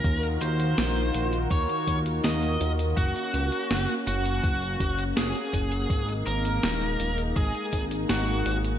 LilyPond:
<<
  \new Staff \with { instrumentName = "Lead electric guitar" } { \time 4/4 \key ees \dorian \tempo 4 = 82 bes'8 c''4. des''8 r8 ees''8 r8 | ges'4. ges'4. aes'4~ | aes'8 bes'4. aes'8 r8 ges'8 r8 | }
  \new Staff \with { instrumentName = "Analog synth pad" } { \time 4/4 \key ees \dorian <ees ees' f' ges' bes'>1 | <bes des' ges'>1 | <aes ees'>1 | }
  \new Staff \with { instrumentName = "Analog synth bass" } { \clef bass \time 4/4 \key ees \dorian ees,8 ees,8 bes,,8 bes,,8 ees,8 ees,8 ees,8 ees,8 | ges,,8 des,8 ges,,8 ges,,8 ges,,8 ges,,8 ges,,8 ges,,8 | aes,,8 aes,,8 ees,,8 ees,,8 aes,,8 aes,,8 aes,,8 aes,,8 | }
  \new DrumStaff \with { instrumentName = "Drums" } \drummode { \time 4/4 <hh bd>16 hh16 hh16 hh16 <hh sn>16 hh16 hh16 hh16 <hh bd>16 hh16 <hh bd>16 hh16 <hh sn>16 hh16 hh16 hh16 | <hh bd>16 hh16 hh16 hh16 <hh sn>16 hh16 hh16 hh16 <hh bd>16 hh16 <hh bd>16 hh16 <hh sn>16 hh16 <hh bd>16 hh16 | <hh bd>16 hh16 hh16 hh16 <hh sn>16 hh16 hh16 hh16 <hh bd>16 hh16 <hh bd>16 hh16 <hh sn>16 hh16 hh16 hh16 | }
>>